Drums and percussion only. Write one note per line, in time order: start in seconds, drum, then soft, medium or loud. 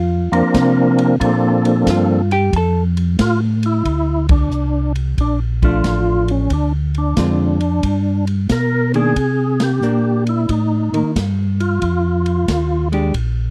0.33 ride soft
0.54 kick soft
0.54 snare medium
0.54 hi-hat pedal medium
0.54 ride medium
0.98 ride soft
1.21 kick soft
1.21 ride medium
1.65 ride soft
1.87 kick soft
1.87 snare medium
1.87 hi-hat pedal medium
1.87 ride medium
2.31 ride soft
2.53 kick soft
2.53 ride medium
2.97 ride soft
3.19 kick soft
3.19 snare medium
3.19 hi-hat pedal medium
3.19 ride medium
3.63 ride soft
3.85 kick soft
3.85 ride medium
4.29 kick medium
4.29 ride medium
4.51 hi-hat pedal medium
4.95 ride soft
5.18 kick soft
5.18 ride soft
5.62 kick soft
5.62 ride soft
5.84 kick soft
5.84 snare medium
5.84 hi-hat pedal medium
5.84 ride medium
6.28 ride soft
6.50 kick soft
6.50 ride medium
6.94 ride soft
7.17 kick soft
7.17 snare medium
7.17 hi-hat pedal soft
7.17 ride medium
7.60 ride soft
7.83 kick soft
7.83 ride medium
8.27 ride soft
8.49 kick soft
8.49 snare medium
8.49 hi-hat pedal medium
8.49 ride medium
8.94 ride soft
9.16 kick soft
9.16 ride medium
9.60 snare medium
9.60 ride medium
9.82 hi-hat pedal medium
10.27 ride soft
10.49 kick soft
10.49 ride medium
10.94 ride soft
11.16 kick soft
11.16 snare medium
11.16 hi-hat pedal soft
11.16 ride medium
11.60 ride soft
11.82 kick soft
11.82 ride medium
12.26 ride soft
12.48 kick soft
12.48 snare medium
12.48 hi-hat pedal medium
12.48 ride medium
12.93 ride soft
13.14 kick soft
13.14 ride medium